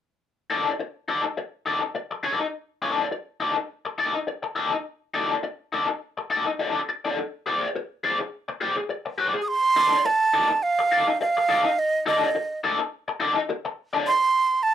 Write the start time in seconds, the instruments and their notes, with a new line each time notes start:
0.50 overdriven electric guitar D#4 A4 D5
0.79 muted overdriven electric guitar stroke
1.08 overdriven electric guitar D#4 A4 D5
1.25 muted overdriven electric guitar stroke
1.37 muted overdriven electric guitar stroke
1.66 overdriven electric guitar D#4 A4 D5
1.82 muted overdriven electric guitar stroke
1.95 muted overdriven electric guitar stroke
2.11 muted overdriven electric guitar stroke
2.23 overdriven electric guitar D#4 A4 D5
2.40 muted overdriven electric guitar stroke
2.82 overdriven electric guitar D#4 A4 D5
3.11 muted overdriven electric guitar stroke
3.40 overdriven electric guitar D#4 A4 D5
3.57 muted overdriven electric guitar stroke
3.85 muted overdriven electric guitar stroke
3.98 overdriven electric guitar D#4 A4 D5
4.14 muted overdriven electric guitar stroke
4.27 muted overdriven electric guitar stroke
4.43 muted overdriven electric guitar stroke
4.55 overdriven electric guitar D#4 A4 D5
4.72 muted overdriven electric guitar stroke
5.14 overdriven electric guitar D#4 A4 D5
5.43 muted overdriven electric guitar stroke
5.72 overdriven electric guitar D#4 A4 D5
5.88 muted overdriven electric guitar stroke
6.17 muted overdriven electric guitar stroke
6.30 overdriven electric guitar D#4 A4 D5
6.46 muted overdriven electric guitar stroke
6.59 overdriven electric guitar D#4 A4 D5
6.89 muted overdriven electric guitar stroke
7.05 overdriven electric guitar D#4 A4 D5
7.46 overdriven electric guitar G#4 C5 D5
7.75 muted overdriven electric guitar stroke
8.04 overdriven electric guitar G#4 C5 D5
8.20 muted overdriven electric guitar stroke
8.48 muted overdriven electric guitar stroke
8.61 overdriven electric guitar G#4 C5 D5
8.77 muted overdriven electric guitar stroke
8.89 muted overdriven electric guitar stroke
9.06 muted overdriven electric guitar stroke
9.18 overdriven electric guitar G#4 C5 D5
9.35 muted overdriven electric guitar stroke
9.42 flute D#6
9.48 flute C6
9.76 overdriven electric guitar D#4 A4 D5
10.05 flute A5, muted overdriven electric guitar stroke
10.33 overdriven electric guitar D#4 A4 D5
10.50 muted overdriven electric guitar stroke
10.63 flute F5
10.79 muted overdriven electric guitar stroke
10.92 overdriven electric guitar D#4 A4 D5
11.08 muted overdriven electric guitar stroke
11.21 flute F5, muted overdriven electric guitar stroke
11.37 muted overdriven electric guitar stroke
11.49 overdriven electric guitar D#4 A4 D5
11.65 muted overdriven electric guitar stroke
11.79 flute D#5
12.06 overdriven electric guitar D#4 A4 D5, flute D#5
12.35 muted overdriven electric guitar stroke
12.64 overdriven electric guitar D#4 A4 D5
12.79 muted overdriven electric guitar stroke
13.08 muted overdriven electric guitar stroke
13.20 overdriven electric guitar D#4 A4 D5
13.37 muted overdriven electric guitar stroke
13.49 muted overdriven electric guitar stroke
13.65 muted overdriven electric guitar stroke
13.93 overdriven electric guitar D#4 A4 D5
14.07 flute C6
14.63 flute A5